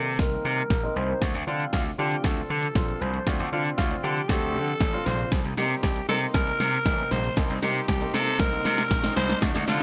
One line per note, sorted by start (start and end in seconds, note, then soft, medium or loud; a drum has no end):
0.00 0.21 C3 medium
0.00 1.18 C3 medium
0.00 1.18 D#3 medium
0.00 1.18 G3 medium
0.00 1.18 A#3 medium
0.00 0.21 A4 medium
0.19 0.36 C2 loud
0.19 0.58 A#3 medium
0.19 0.58 C4 medium
0.19 0.59 D#4 medium
0.19 0.98 A#4 loud
0.19 kick loud
0.19 snare medium
0.45 0.61 C3 medium
0.70 0.87 A#1 medium
0.70 kick loud
0.70 snare medium
0.83 1.22 A#3 medium
0.83 1.22 C4 medium
0.83 1.22 D#4 medium
0.96 1.13 C2 medium
0.96 1.22 C5 loud
1.22 1.30 D2 loud
1.22 9.83 C3 medium
1.22 5.28 F3 medium
1.22 5.28 A3 medium
1.22 5.28 D4 medium
1.22 kick loud
1.22 snare medium
1.22 closed hi-hat medium
1.34 1.43 D2 medium
1.34 closed hi-hat medium
1.47 1.64 D3 loud
1.47 1.79 C4 medium
1.47 1.79 D4 medium
1.47 1.71 F4 medium
1.47 1.79 F4 medium
1.60 closed hi-hat soft
1.73 1.90 D2 medium
1.73 1.84 F4 medium
1.73 kick loud
1.73 snare medium
1.73 closed hi-hat medium
1.86 closed hi-hat soft
1.98 2.15 D3 medium
1.98 2.46 C4 medium
1.98 2.46 D4 medium
1.98 2.46 F4 medium
1.98 2.26 G4 medium
2.11 closed hi-hat medium
2.24 2.41 D2 loud
2.24 3.03 A4 loud
2.24 kick loud
2.24 snare medium
2.24 closed hi-hat medium
2.37 closed hi-hat soft
2.50 2.67 D3 medium
2.63 closed hi-hat medium
2.75 2.92 A#1 medium
2.75 3.07 C4 medium
2.75 3.07 D4 medium
2.75 3.07 F4 medium
2.75 kick loud
2.75 snare medium
2.75 closed hi-hat medium
2.88 closed hi-hat medium
3.01 3.18 C2 medium
3.01 3.27 C5 loud
3.14 closed hi-hat soft
3.26 3.35 D2 loud
3.26 3.42 C4 medium
3.26 3.42 D4 medium
3.26 3.43 F4 medium
3.26 kick loud
3.26 snare medium
3.26 closed hi-hat medium
3.39 3.48 D2 medium
3.39 closed hi-hat medium
3.52 3.69 D3 medium
3.52 3.76 C4 medium
3.52 3.76 D4 medium
3.52 3.64 F4 medium
3.52 3.76 F4 medium
3.65 closed hi-hat soft
3.78 3.95 D2 medium
3.78 3.89 F4 medium
3.78 kick loud
3.78 snare medium
3.78 closed hi-hat medium
3.90 4.14 C4 medium
3.90 4.14 D4 medium
3.90 4.15 F4 medium
3.90 closed hi-hat soft
4.03 4.20 D3 loud
4.03 4.31 G4 medium
4.16 closed hi-hat medium
4.29 4.56 D2 loud
4.29 4.69 C4 medium
4.29 4.69 D4 medium
4.29 4.69 G4 medium
4.29 5.08 A4 loud
4.29 kick loud
4.29 snare medium
4.29 closed hi-hat medium
4.42 closed hi-hat soft
4.55 4.72 D3 medium
4.68 closed hi-hat medium
4.81 4.97 A1 medium
4.81 kick loud
4.81 snare medium
4.81 closed hi-hat medium
4.93 5.32 C4 medium
4.93 5.32 D4 medium
4.93 5.32 F4 medium
4.93 closed hi-hat medium
5.06 5.23 A#1 loud
5.06 5.32 C5 medium
5.06 snare medium
5.19 closed hi-hat soft
5.32 5.40 C2 loud
5.32 9.38 G3 medium
5.32 9.38 A#3 medium
5.32 9.38 D#4 medium
5.32 kick loud
5.32 snare medium
5.32 closed hi-hat medium
5.32 riser medium
5.32 shaker medium
5.44 5.53 C2 medium
5.44 closed hi-hat medium
5.44 shaker soft
5.57 5.74 C3 loud
5.57 5.89 A#3 medium
5.57 5.89 C4 medium
5.57 5.89 D#4 medium
5.57 5.81 G4 medium
5.57 snare medium
5.57 shaker medium
5.70 closed hi-hat soft
5.70 shaker soft
5.83 6.00 C2 loud
5.83 6.07 G4 medium
5.83 kick loud
5.83 snare medium
5.83 closed hi-hat medium
5.83 shaker medium
5.96 closed hi-hat soft
5.96 shaker soft
6.09 6.25 C3 loud
6.09 6.56 A#3 medium
6.09 6.56 C4 medium
6.09 6.56 D#4 medium
6.09 6.20 A4 medium
6.09 snare medium
6.09 shaker soft
6.21 closed hi-hat medium
6.21 shaker medium
6.34 6.51 C2 loud
6.34 7.13 A#4 loud
6.34 kick loud
6.34 snare medium
6.34 closed hi-hat medium
6.34 shaker medium
6.47 closed hi-hat soft
6.47 shaker soft
6.60 6.77 C3 loud
6.60 snare medium
6.60 shaker medium
6.73 closed hi-hat medium
6.73 shaker soft
6.85 7.02 A1 loud
6.85 7.17 A#3 medium
6.85 7.17 C4 medium
6.85 7.17 D#4 medium
6.85 kick loud
6.85 snare medium
6.85 closed hi-hat medium
6.85 shaker medium
6.98 closed hi-hat medium
6.98 shaker soft
7.11 7.28 A#1 loud
7.11 7.37 C5 loud
7.11 snare medium
7.11 shaker soft
7.24 closed hi-hat medium
7.24 shaker medium
7.37 7.45 C2 loud
7.37 7.53 A#3 medium
7.37 7.53 C4 medium
7.37 7.53 D#4 medium
7.37 kick loud
7.37 snare medium
7.37 closed hi-hat medium
7.37 shaker medium
7.50 7.58 C2 loud
7.50 closed hi-hat medium
7.50 shaker medium
7.50 shaker soft
7.62 7.79 C3 loud
7.62 7.86 A#3 medium
7.62 7.86 C4 medium
7.62 7.86 D#4 medium
7.62 7.87 G4 medium
7.62 snare medium
7.62 open hi-hat medium
7.62 shaker medium
7.75 closed hi-hat medium
7.75 shaker medium
7.75 shaker soft
7.88 8.05 C2 loud
7.88 8.15 G4 medium
7.88 kick medium
7.88 snare loud
7.88 closed hi-hat medium
7.88 shaker medium
8.01 8.25 A#3 medium
8.01 8.25 C4 medium
8.01 8.25 D#4 medium
8.01 closed hi-hat soft
8.01 shaker soft
8.14 8.41 C3 medium
8.14 8.41 A4 loud
8.14 snare loud
8.14 open hi-hat medium
8.14 shaker soft
8.27 closed hi-hat medium
8.27 shaker medium
8.39 8.56 C2 loud
8.39 8.79 A#3 medium
8.39 8.79 C4 medium
8.39 8.79 D#4 medium
8.39 9.16 A#4 loud
8.39 kick loud
8.39 snare loud
8.39 closed hi-hat medium
8.39 shaker medium
8.52 closed hi-hat soft
8.52 shaker medium
8.52 shaker soft
8.65 8.82 C3 loud
8.65 snare loud
8.65 open hi-hat medium
8.65 shaker medium
8.65 shaker soft
8.78 snare loud
8.78 closed hi-hat medium
8.78 shaker medium
8.78 shaker soft
8.91 9.07 A#1 medium
8.91 kick loud
8.91 snare loud
8.91 closed hi-hat medium
8.91 shaker medium
9.03 9.42 A#3 medium
9.03 9.42 C4 medium
9.03 9.42 D#4 loud
9.03 snare loud
9.03 closed hi-hat medium
9.03 shaker medium
9.03 shaker soft
9.16 9.33 C2 medium
9.16 9.40 C5 loud
9.16 snare loud
9.16 open hi-hat medium
9.16 shaker soft
9.16 shaker medium
9.29 snare loud
9.29 closed hi-hat soft
9.29 shaker medium
9.42 9.50 D2 loud
9.42 9.83 F3 medium
9.42 9.83 A3 medium
9.42 9.83 D4 medium
9.42 kick loud
9.42 snare loud
9.42 closed hi-hat medium
9.42 shaker medium
9.55 9.63 D2 loud
9.55 snare loud
9.55 closed hi-hat medium
9.55 shaker medium
9.55 shaker soft
9.67 9.83 D3 loud
9.67 9.83 C4 medium
9.67 9.83 D4 medium
9.67 9.83 F4 medium
9.67 snare loud
9.67 open hi-hat medium
9.67 shaker medium